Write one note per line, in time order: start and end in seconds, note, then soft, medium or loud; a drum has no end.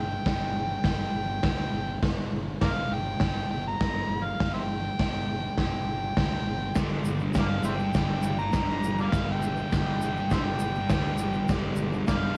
0.00 0.16 G1 medium
0.00 0.83 G5 medium
0.26 0.75 G1 medium
0.26 kick loud
0.26 snare loud
0.26 open hi-hat medium
0.84 1.09 G1 medium
0.84 1.99 G5 medium
0.84 kick loud
0.84 snare loud
0.84 open hi-hat soft
1.14 1.39 G1 medium
1.43 1.68 D2 medium
1.43 kick loud
1.43 snare loud
1.43 open hi-hat medium
1.72 1.97 G1 medium
2.03 2.27 G1 medium
2.03 kick loud
2.03 snare loud
2.03 open hi-hat medium
2.31 2.56 G1 medium
2.61 2.87 G1 medium
2.61 2.71 A#4 medium
2.61 2.69 D5 medium
2.61 2.95 F5 loud
2.61 kick loud
2.61 snare loud
2.61 open hi-hat medium
2.89 3.15 G1 medium
2.93 3.50 G5 loud
3.20 3.45 G1 medium
3.20 kick loud
3.20 snare loud
3.20 open hi-hat medium
3.50 3.75 G1 medium
3.50 3.64 G5 medium
3.68 4.26 A#5 medium
3.80 4.05 G1 medium
3.80 kick loud
3.80 snare loud
3.80 open hi-hat medium
4.08 4.34 G1 medium
4.24 4.53 F5 medium
4.40 4.89 G1 medium
4.40 kick loud
4.40 snare loud
4.40 open hi-hat medium
4.54 4.61 C5 medium
4.54 4.61 E5 medium
4.54 5.55 G5 medium
4.99 5.48 G1 medium
4.99 kick loud
4.99 snare loud
4.99 open hi-hat medium
5.58 5.82 G1 medium
5.58 6.74 G5 loud
5.58 kick loud
5.58 snare medium
5.58 open hi-hat soft
5.84 6.10 G1 medium
6.17 6.42 D2 medium
6.17 kick loud
6.17 snare loud
6.17 open hi-hat medium
6.45 6.70 G1 medium
6.74 7.01 G1 medium
6.74 7.34 G2 medium
6.74 7.22 D3 loud
6.74 7.23 G4 medium
6.74 7.23 B4 medium
6.74 7.23 D5 medium
6.74 kick loud
6.74 snare loud
6.74 open hi-hat medium
6.74 shaker medium
6.79 7.20 G3 loud
7.04 7.29 G1 medium
7.04 shaker loud
7.20 7.37 G3 medium
7.20 shaker soft
7.24 7.35 D3 medium
7.33 7.59 G1 medium
7.33 7.63 G2 medium
7.33 7.65 D3 loud
7.33 7.84 G4 medium
7.33 7.84 B4 medium
7.33 kick loud
7.33 snare loud
7.33 open hi-hat medium
7.33 shaker medium
7.38 7.66 G3 loud
7.38 7.47 A#4 medium
7.38 7.84 D5 medium
7.38 7.47 D5 medium
7.38 7.64 F5 medium
7.63 7.89 G1 medium
7.63 7.93 G2 medium
7.63 7.80 D3 medium
7.63 7.81 G3 medium
7.63 7.74 C5 medium
7.63 7.73 E5 medium
7.63 8.22 G5 medium
7.63 shaker loud
7.79 muted distorted electric guitar stroke soft
7.79 shaker soft
7.93 8.19 G1 medium
7.93 8.51 G2 medium
7.93 8.12 D3 medium
7.93 8.08 G3 medium
7.93 8.43 G4 medium
7.93 8.43 B4 medium
7.93 8.43 D5 medium
7.93 kick loud
7.93 snare loud
7.93 open hi-hat medium
7.93 shaker medium
8.08 8.38 G3 medium
8.13 8.39 D3 medium
8.23 8.48 G1 medium
8.23 8.38 G5 medium
8.23 shaker medium
8.38 8.96 A#5 medium
8.38 muted distorted electric guitar stroke soft
8.38 shaker soft
8.51 8.78 G1 medium
8.51 8.83 G2 medium
8.51 8.85 D3 loud
8.51 8.87 G3 medium
8.51 9.02 G4 medium
8.51 kick loud
8.51 snare loud
8.51 open hi-hat medium
8.51 shaker medium
8.56 9.03 B4 medium
8.56 9.03 D5 medium
8.82 9.07 G1 medium
8.82 9.11 G2 medium
8.82 shaker medium
8.86 9.01 D3 medium
8.86 8.98 G3 medium
8.98 9.13 D3 medium
8.98 9.15 G3 medium
8.98 9.08 A#4 medium
8.98 9.08 D5 medium
8.98 9.28 F5 medium
8.98 shaker soft
9.12 9.62 G1 medium
9.12 9.71 G2 medium
9.12 9.60 D3 loud
9.12 9.56 G3 loud
9.12 9.61 G4 medium
9.12 9.62 B4 medium
9.12 9.62 E5 medium
9.12 kick loud
9.12 snare loud
9.12 open hi-hat medium
9.12 shaker medium
9.32 10.30 G5 medium
9.42 shaker medium
9.56 9.74 G3 medium
9.56 shaker soft
9.61 9.73 D3 medium
9.72 10.21 G1 medium
9.72 10.01 G2 medium
9.72 10.02 D3 loud
9.72 10.04 G3 loud
9.72 10.21 G4 medium
9.72 10.22 B4 medium
9.72 kick loud
9.72 snare loud
9.72 open hi-hat medium
9.72 shaker medium
9.77 10.22 D5 medium
10.01 10.31 G2 medium
10.01 10.18 D3 medium
10.01 10.18 G3 medium
10.01 shaker medium
10.17 muted distorted electric guitar stroke soft
10.17 shaker soft
10.30 10.55 G1 medium
10.30 10.90 G2 medium
10.30 10.48 D3 medium
10.30 10.80 G4 medium
10.30 10.80 B4 medium
10.30 10.40 C5 medium
10.30 10.80 D5 medium
10.30 10.40 E5 medium
10.30 11.46 G5 medium
10.30 kick medium
10.30 snare loud
10.30 open hi-hat medium
10.30 shaker medium
10.36 10.46 G3 medium
10.46 10.78 D3 medium
10.46 10.77 G3 medium
10.59 10.84 G1 medium
10.59 shaker medium
10.75 muted distorted electric guitar stroke medium
10.75 shaker soft
10.90 11.15 D2 medium
10.90 11.20 G2 loud
10.90 11.22 D3 medium
10.90 11.38 G4 medium
10.90 11.39 B4 medium
10.90 11.39 D5 medium
10.90 kick loud
10.90 snare loud
10.90 open hi-hat medium
10.90 shaker medium
10.94 11.25 G3 medium
11.18 11.43 G1 medium
11.18 11.48 G2 medium
11.18 shaker medium
11.23 11.39 D3 medium
11.23 11.36 G3 medium
11.33 11.53 G3 medium
11.33 shaker soft
11.41 11.49 D3 medium
11.48 11.73 G1 medium
11.48 12.06 G2 medium
11.48 11.94 D3 loud
11.48 11.97 G4 medium
11.48 11.98 B4 medium
11.48 11.98 D5 medium
11.48 kick loud
11.48 snare loud
11.48 open hi-hat medium
11.48 shaker medium
11.53 11.90 G3 loud
11.75 12.01 G1 medium
11.75 shaker loud
11.91 12.10 G3 medium
11.91 shaker soft
11.95 12.06 D3 medium
12.06 12.32 G1 medium
12.06 12.35 G2 loud
12.06 12.37 D3 medium
12.06 12.37 G4 medium
12.06 12.16 A#4 medium
12.06 12.37 B4 medium
12.06 12.15 D5 medium
12.06 12.37 D5 medium
12.06 12.37 F5 medium
12.06 kick loud
12.06 snare loud
12.06 open hi-hat medium
12.06 shaker medium
12.10 12.37 G3 loud